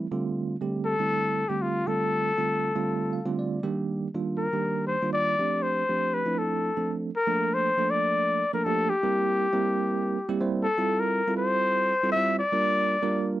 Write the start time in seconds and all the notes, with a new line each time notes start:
0.11 D3 G3 A3 C4 F4
0.61 D3 G3 A3 C4 G4
0.85 A4
0.99 D3 G3 A3 C4 E4
1.49 D3 G3 A3 C4 G4
1.62 F4
1.87 D3 G3 A3 C4 F4 A4
2.38 D3 G3 A3 C4 F4
2.75 D3 G3 A3 C4 F4
3.13 F5
3.26 D3 G3 A3 C4 F4
3.39 D5
3.63 D#3 G3 A#3 D4 G4
4.14 D#3 G3 A#3 D4 F4
4.38 A#4
4.53 D#3 G3 A#3 D4 G4
4.87 C5
5.02 D#3 G3 A#3 D4 F4
5.13 D5
5.39 F3 A3 C4 D4 G4
5.63 C5
5.89 F3 A3 C4 D4 G4
6.14 B4
6.25 F3 A3 C4 D4 E4
6.38 A4
6.77 F3 A3 C4 D4 A4
7.16 A#4
7.27 F3 A3 A#3 D4 A4
7.54 C5
7.78 F3 A3 A#3 D4 A4
7.91 D5
8.53 F3 A3 A#3 D4 A4 A#4
8.65 F3 A3 A#3 D4 G4 A4
8.90 G4
9.03 G3 A#3 C4 E4 A#4
9.53 G3 A#3 C4 E4 A#4
10.29 G3 A#3 C4 E4 G4
10.41 G3 A#3 C4 E4 C5
10.63 A4
10.78 G3 C4 E4 F4 A4
11.00 A#4
11.28 G3 C4 E4 F4 A4
11.37 C5
12.03 G3 C4 E4 F4 A4
12.12 E5
12.16 G3 C4 E4 F4 C5
12.39 D5
12.52 G3 A#3 D4 F4 A#4
13.02 G3 A#3 D4 F4 A#4